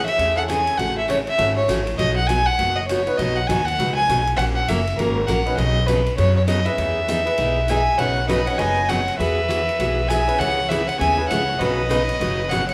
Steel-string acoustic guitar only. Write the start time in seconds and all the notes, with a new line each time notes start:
0.18 C#3 E3 A3 C#4 G#4
0.48 C#3 E3 A3 C#4 G#4
0.78 C#3 E3 A3 C#4 F#4
1.08 C#3 E3 A3 C#4 F#4
1.38 C#3 E3 A3 C#4 F#4
1.68 C#3 E3 A3 C#4 F#4
1.98 B2 F#3 B3 D#4 F#4
2.29 B2 F#3 B3 D#4 F#4
2.59 B2 F#3 B3 D#4 F#4
2.90 B2 F#3 B3 D#4 F#4
3.19 B2 F#3 B3 D#4 F#4
3.49 B2 F#3 B3 D#4 F#4
3.79 B2 F#3 B3 D#4 F#4
4.09 B2 F#3 B3 D#4 F#4
4.39 F#3 A#3 C#4 F#4 A#4
4.69 F#3 A#3 C#4 F#4 A#4
4.99 F#3 A#3 C#4 F#4 A#4
5.29 F#3 A#3 C#4 F#4 A#4
5.57 B2 C#3 F#3 B3 D#4 B4
5.88 B2 C#3 F#3 B3 D#4 B4
6.17 B2 C#3 F#3 B3 D#4 B4
6.47 B2 C#3 F#3 B3 D#4 B4
6.78 E3 B3 D#4 G#4
7.08 E3 B3 D#4 G#4
7.38 E3 B3 D#4 G#4
7.70 E3 B3 D#4 G#4
7.99 B2 C#3 F#3 B3 D#4 B4
8.28 B2 C#3 F#3 B3 D#4 B4
8.58 B2 C#3 F#3 B3 D#4 B4
8.89 B2 C#3 F#3 B3 D#4 B4
9.19 E3 F#3 B3 F#4 G#4
9.49 E3 F#3 B3 F#4 G#4
9.80 E3 F#3 B3 F#4 G#4
10.10 E3 F#3 B3 F#4 G#4
10.39 C#3 E3 B3 C#4 G#4
10.70 C#3 E3 B3 C#4 G#4
10.99 C#3 E3 B3 C#4 G#4
11.31 C#3 E3 B3 C#4 G#4
11.60 B2 C#3 F#3 B3 D#4 B4
11.89 B2 C#3 F#3 B3 D#4 B4
12.20 B2 C#3 F#3 B3 D#4 B4
12.51 B2 C#3 F#3 B3 D#4 B4